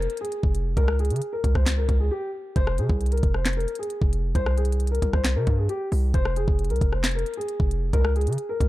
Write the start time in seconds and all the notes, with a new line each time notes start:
0.00 A#4, closed hi-hat
0.10 closed hi-hat
0.17 G#4, closed hi-hat
0.25 closed hi-hat
0.32 closed hi-hat
0.43 F1, kick
0.55 closed hi-hat
0.77 C#2 A#4, kick, closed hi-hat
0.88 cross-stick
0.99 G#4, closed hi-hat
1.05 closed hi-hat
1.10 C#3, closed hi-hat
1.16 closed hi-hat
1.22 closed hi-hat
1.33 A#4
1.44 C#2, kick, closed hi-hat
1.55 C#2 C5, kick, cross-stick
1.66 snare, clap, closed hi-hat
1.78 A#4
1.89 C#2, kick, closed hi-hat
2.00 G#4
2.11 G4
2.56 F1 C5, kick, closed hi-hat
2.67 cross-stick
2.78 C3 G#4, closed hi-hat
2.89 C2, kick
3.01 closed hi-hat
3.06 closed hi-hat
3.12 A#4, closed hi-hat
3.18 closed hi-hat
3.23 F1, kick, closed hi-hat
3.34 C5, cross-stick
3.46 snare, clap, closed hi-hat
3.53 A#4, closed hi-hat
3.60 closed hi-hat
3.68 closed hi-hat
3.75 G#4, closed hi-hat
3.83 closed hi-hat
3.90 closed hi-hat
4.02 F1, kick
4.13 closed hi-hat
4.35 C2 C5, kick, closed hi-hat
4.46 cross-stick
4.57 G#4, closed hi-hat
4.65 closed hi-hat
4.72 closed hi-hat
4.80 closed hi-hat
4.87 closed hi-hat
4.91 A#4, closed hi-hat
5.02 C2, kick, closed hi-hat
5.13 C2 C5, kick, cross-stick
5.25 snare, clap, closed hi-hat
5.36 C3 A#4
5.47 G2, kick, closed hi-hat
5.58 G#4
5.69 G4, closed hi-hat
5.92 C2, open hi-hat
6.14 F1 C5, kick, closed hi-hat
6.25 cross-stick
6.36 G#4, closed hi-hat
6.48 F1, kick
6.59 closed hi-hat
6.65 closed hi-hat
6.70 C2 A#4, closed hi-hat
6.76 closed hi-hat
6.81 F1, kick, closed hi-hat
6.92 C5, cross-stick
7.04 snare, clap, closed hi-hat
7.11 A#4, closed hi-hat
7.19 closed hi-hat
7.26 closed hi-hat
7.34 G#4, closed hi-hat
7.41 closed hi-hat
7.48 closed hi-hat
7.60 F1, kick
7.71 closed hi-hat
7.93 C#2 A#4, kick, closed hi-hat
8.05 cross-stick
8.16 G#4, closed hi-hat
8.21 closed hi-hat
8.27 C#3, closed hi-hat
8.33 closed hi-hat
8.38 closed hi-hat
8.49 A#4
8.60 C#2, kick, closed hi-hat